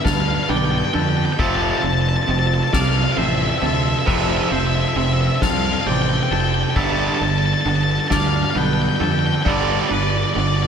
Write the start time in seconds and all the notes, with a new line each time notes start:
Already playing: G3 B3 D4 B4
0.04 D2 G2 D3 A4 F5, kick, snare, ride
0.13 F5
0.20 F5
0.28 F5
0.35 F5
0.43 F5
0.49 B1 G2 D3 B3 D5 G5, ride
0.57 G5
0.65 G5
0.71 G5
0.78 G5
0.85 G5
0.93 F2 G2 D3 A4 G5, ride
1.00 G5
1.09 G5
1.17 G5
1.25 G5
1.32 G5
1.39 F1 F2 C3 F3 C4 F4 A4 E5 A5, kick, crash
1.47 A5
1.55 A5
1.62 A5
1.70 A5
1.78 A5
1.83 F1 F2 C3 A5, ride
1.93 A5
2.01 A5
2.09 A5
2.16 A5
2.23 A5
2.27 F1 F2 C3 C4 A5, ride
2.39 A5
2.47 A5
2.54 A5
2.63 A5
2.73 C2 F2 C3 A4 D5 F5, kick, snare, ride
2.81 F5
2.88 F5
2.97 F5
3.04 F5
3.12 F5
3.17 A1 F2 C3 C4 C5 E5, ride
3.26 E5
3.35 E5
3.42 E5
3.50 E5
3.58 E5
3.62 D2 F2 C3 A4, ride
3.66 E5
3.74 E5
3.83 E5
3.89 E5
3.99 E5
4.06 F1 F2 C3 F3 B4 E5, kick, ride
4.15 E5
4.22 E5
4.30 E5
4.37 E5
4.43 E5
4.51 F1 F2 C3 C5 E5, ride
4.60 E5
4.67 E5
4.74 E5
4.81 E5
4.88 E5
4.96 F1 F2 C3 C4 E5, ride
5.05 E5
5.13 E5
5.21 E5
5.27 E5
5.36 E5
5.42 C2 F2 C3 A4 F5, kick, snare, ride
5.50 F5
5.57 F5
5.66 F5
5.73 F5
5.81 F5
5.86 A1 F2 C3 C4 D5 G5, ride
5.94 G5
6.02 G5
6.09 G5
6.17 G5
6.23 G5
6.31 F1 F2 C3 A4 G5, ride
6.40 G5
6.48 G5
6.54 G5
6.63 G5
6.70 G5
6.75 G1 G2 D3 G3 B3 D4 A4 E5 A5, kick, ride
6.84 A5
6.92 A5
6.99 A5
7.08 A5
7.15 A5
7.21 G1 G2 D3 A5, ride
7.30 A5
7.38 A5
7.46 A5
7.53 A5
7.61 A5
7.65 G1 G2 D3 B3 A5, ride
7.76 A5
7.83 A5
7.91 A5
8.00 A5
8.08 D2 G2 D3 A4 D5 A5, kick, snare, ride
8.12 F5
8.20 F5
8.27 F5
8.36 F5
8.43 F5
8.50 F5
8.55 B1 G2 D3 B3 B4 G5, ride
8.65 G5
8.73 G5
8.82 G5
8.89 G5
8.96 G5
9.00 F2 G2 D3 A4 G5, ride
9.11 G5
9.19 G5
9.27 G5
9.35 G5
9.43 G1 G2 D3 G3 A4 G5, kick, ride
9.49 D5
9.57 D5
9.64 D5
9.72 D5
9.79 D5
9.87 G1 G2 D3 B4 D5, ride
9.94 D5
10.03 D5
10.10 D5
10.18 D5
10.24 D5
10.34 G1 G2 D3 B3 D5, ride
10.40 D5
10.48 D5
10.57 D5
10.63 D5